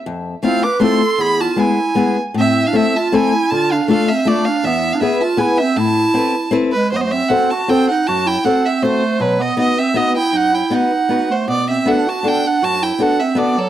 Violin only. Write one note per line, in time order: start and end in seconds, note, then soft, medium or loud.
0.44 0.65 F5 medium
0.63 0.81 D6 medium
0.82 1.23 C6 loud
1.21 1.42 B5 loud
1.41 1.61 A5 medium
1.60 2.17 G#5 medium
2.39 2.68 E5 medium
2.67 2.78 F5 medium
2.76 2.98 E5 loud
2.97 3.16 A5 medium
3.15 3.52 G#5 loud
3.51 3.74 A5 loud
3.72 3.89 F5 medium
3.89 4.10 F5 medium
4.09 4.29 E5 medium
4.28 4.47 D5 medium
4.45 4.67 F5 medium
4.65 4.95 E5 medium
4.93 5.02 F5 medium
5.01 5.22 E5 medium
5.21 5.40 A5 medium
5.39 5.60 G#5 medium
5.58 5.78 E5 medium
5.77 6.53 A5 medium
6.72 6.90 B4 medium
6.92 6.97 C5 medium
6.96 7.03 D#5 medium
7.01 7.13 C5 medium
7.11 7.30 E5 medium
7.29 7.52 F#5 medium
7.50 7.71 A5 medium
7.70 7.89 G5 medium
7.89 8.09 F#5 medium
8.07 8.28 A5 loud
8.27 8.46 G5 medium
8.45 8.67 F#5 medium
8.66 8.85 E5 medium
8.83 9.23 C5 medium
9.21 9.43 B4 medium
9.41 9.58 D#5 medium
9.59 9.80 D#5 medium
9.79 9.98 E5 medium
9.97 10.16 D#5 medium
10.17 10.38 G5 medium
10.36 10.56 F#5 loud
10.55 10.76 G5 medium
10.75 11.33 F#5 medium
11.32 11.49 C5 medium
11.50 11.67 D5 medium
11.70 11.90 E5 medium
11.88 12.11 F#5 medium
12.09 12.30 A5 medium
12.28 12.48 G5 medium
12.47 12.66 F#5 medium
12.64 12.85 A5 loud
12.83 13.03 G5 medium
13.02 13.21 F#5 medium
13.20 13.40 E5 medium
13.39 13.60 D5 medium
13.59 13.69 A4 medium